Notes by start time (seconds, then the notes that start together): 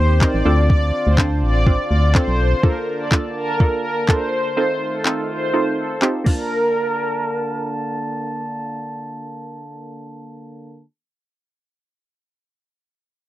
Already playing: D#2 D#3 C4 D#4 G4 C5
0.21 C4 D#4 G4 A#4 D5, kick, clap
0.34 A1
0.45 D2 D3 C4 D4 F4 A4
0.70 D5, kick
1.07 D2 C5
1.18 C4 D4 F4 A4, kick, clap
1.42 A1 D5
1.66 C4 D4 F4 C5, kick
1.91 D2 D5
2.15 C4 D4 F4 A4 C5, kick, clap
2.28 B1
2.63 D3 A#3 D4 F4 A4 A#4 A5, kick
3.00 D5
3.11 A#3 D4 F4 A4, kick, clap
3.36 A#4
3.60 A#3 D4 F4 A4, kick
3.84 A#4
4.08 A#3 D4 F4 A4 C5, kick, clap
4.57 D#3 A3 C4 D#4 F4 A4 C5
4.94 A4
5.05 C4 D#4 F4 A4, clap
5.30 C5
5.53 C4 D#4 F4 A4
5.78 A4
6.02 C4 D#4 F4 G4, clap
6.24 D3 A#3 D4 F4 A#4 A5, kick, crash
6.28 A5